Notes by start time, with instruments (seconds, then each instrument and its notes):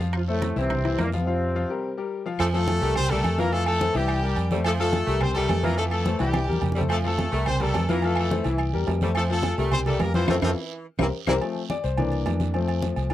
Already playing: fingered electric bass F2
0.00 grand piano F3 F4 F5, short guiro
0.13 trombone section F3 F4, high conga, high timbale, long guiro, claves
0.28 trombone section A2 A3, grand piano A3 A4 C5, high conga
0.42 high conga, high timbale, short guiro
0.56 fingered electric bass C2, trombone section C3 C4, grand piano E3 E4 E5, short guiro
0.70 high conga, low conga, high timbale, long guiro, claves
0.85 grand piano E3 E4 E5, high conga, high timbale
0.98 fingered electric bass F2, trombone section A#2 A#3, high conga, high timbale, low timbale, short guiro, claves
1.12 trombone section C3 C4, grand piano F3 F4 F5, high conga, short guiro
1.27 grand piano F3 F4 F5
1.55 grand piano F3 F4 F5
1.70 grand piano G3 G4 A#4
1.97 grand piano G3 G4 A#4
2.26 grand piano F3 F4 F5
2.39 fingered electric bass F2, saxophone section F3, horn section A3 A4, high conga, low agogo, long guiro, claves
2.54 grand piano F3 F4 F5, horn section A3 A4, high conga
2.68 high conga, low agogo, short guiro
2.81 fingered electric bass C2, grand piano G3 G4 A#4, saxophone section A3, short guiro
2.95 horn section C4 C5, high conga, low conga, low agogo, long guiro, claves
3.10 saxophone section G3, grand piano G3 G4 A#4, horn section A3 A4, high conga, low conga, low agogo
3.24 fingered electric bass F2, high conga, low agogo, short guiro, claves
3.38 saxophone section E3, grand piano F3 F4 F5, horn section A#3 A#4, high conga, short guiro
3.52 grand piano F3 F4 F5, horn section A3 A4, high conga, low agogo, long guiro
3.66 horn section A3 A4, high conga, low agogo, claves
3.80 grand piano A3 A4 C5, high conga, short guiro
3.94 fingered electric bass C2, grand piano E3 E4 E5, horn section G3 G4, high conga, low agogo, short guiro
4.08 high conga, low agogo, long guiro, claves
4.23 grand piano G3 G4 A#4, high conga
4.36 fingered electric bass F2, high conga, low agogo, short guiro
4.51 saxophone section G3, grand piano A3 A4 C5, high conga, short guiro
4.64 saxophone section F3, horn section A3 A4, high conga, low agogo, long guiro, claves
4.79 grand piano F3 F4 F5, horn section A3 A4, high conga
4.92 high conga, low agogo, short guiro
5.07 fingered electric bass C2, grand piano G3 G4 A#4, saxophone section A3, short guiro
5.21 horn section C4 C5, high conga, low conga, low agogo, long guiro, claves
5.35 saxophone section G3, grand piano G3 G4 A#4, horn section A3 A4, high conga, low conga, low agogo
5.49 fingered electric bass F2, high conga, low timbale, low agogo, short guiro, claves
5.63 saxophone section E3, grand piano F3 F4 F5, horn section A#3 A#4, high conga, short guiro
5.77 grand piano F3 F4 F5, horn section A3 A4, high conga, low agogo, long guiro
5.91 horn section A3 A4, high conga, low agogo, claves
6.05 grand piano A3 A4 C5, high conga, short guiro
6.19 fingered electric bass C2, grand piano E3 E4 E5, horn section G3 G4, high conga, low agogo, short guiro
6.33 high conga, low agogo, long guiro, claves
6.48 fingered electric bass E2, grand piano G3 G4 A#4
6.53 high conga
6.61 fingered electric bass F2, low conga, low agogo, short guiro
6.72 saxophone section G3, low conga, short guiro
6.76 grand piano A3 A4 C5
6.81 low conga
6.89 saxophone section F3, horn section A3 A4, low agogo, long guiro, claves
7.04 grand piano F3 F4 F5, horn section A3 A4, high conga
7.18 high conga, low agogo, short guiro
7.32 fingered electric bass C2, grand piano G3 G4 A#4, saxophone section A3, short guiro
7.46 horn section C4 C5, high conga, low conga, low agogo, long guiro, claves
7.60 grand piano G3 G4 A#4, saxophone section G3, horn section A3 A4, high conga, low conga, low agogo
7.74 fingered electric bass F2, high conga, low timbale, low agogo, short guiro, claves
7.89 saxophone section E3, grand piano F3 F4 F5, horn section A#3 A#4, high conga, short guiro
8.02 grand piano F3 F4 F5, horn section A3 A4, high conga, low agogo, long guiro
8.16 horn section A3 A4, high conga, low agogo, claves
8.30 grand piano A3 A4 C5, high conga, short guiro
8.44 fingered electric bass C2, grand piano E3 E4 E5, high conga, low agogo, short guiro
8.58 high conga, low agogo, long guiro, claves
8.73 fingered electric bass E2, grand piano G3 G4 A#4, high conga
8.87 fingered electric bass F2, high conga, low timbale, low agogo, short guiro
9.01 saxophone section G3, grand piano A3 A4 C5, high conga, short guiro
9.15 saxophone section F3, horn section A3 A4, high conga, low agogo, long guiro, claves
9.29 grand piano F3 F4 F5, horn section A3 A4, high conga
9.43 high conga, low agogo, short guiro
9.58 fingered electric bass C2, grand piano G3 G4 A#4, saxophone section A3, short guiro
9.71 horn section C4 C5, high conga, low conga, low agogo, long guiro, claves
9.86 saxophone section G3, grand piano G3 G4 A#4, horn section A3 A4, high conga, low conga, low agogo
9.99 fingered electric bass F2, horn section A#3 A#4, high conga, low timbale, low agogo, short guiro, claves
10.14 saxophone section E3, grand piano F3 F4 F5, horn section C4 C5, high conga, short guiro
10.28 fingered electric bass F2, horn section F3 A3 C4 F4, grand piano C4 F4 A4, high conga, high timbale, long guiro, claves
10.42 fingered electric bass F2, horn section F3 A3 C4 F4, grand piano C4 F4 A4, high conga, high timbale, long guiro, claves
10.99 fingered electric bass C2, horn section E3 A#3 C4 E4, grand piano G4 A#4 C5, high conga, high timbale, long guiro, claves
11.27 fingered electric bass C2, horn section E3 A#3 C4 E4, saxophone section G3, grand piano G4 A#4 C5, high conga, high timbale, long guiro, claves
11.41 grand piano F3 A3 C4, high conga, low agogo, long guiro
11.56 high conga
11.70 grand piano D5, high conga, low agogo, short guiro
11.84 fingered electric bass C2, grand piano C5, short guiro
11.97 grand piano E3 A#3 D4, high conga, low conga, low agogo, long guiro
12.12 high conga, low agogo
12.26 fingered electric bass F2, high conga, low timbale, low agogo, short guiro
12.40 high conga, short guiro
12.54 grand piano F3 A3 C4, high conga, low agogo, long guiro
12.68 high conga, low agogo
12.82 high conga, short guiro
12.96 fingered electric bass C2, high conga, low agogo, short guiro
13.10 grand piano E3, high conga, low agogo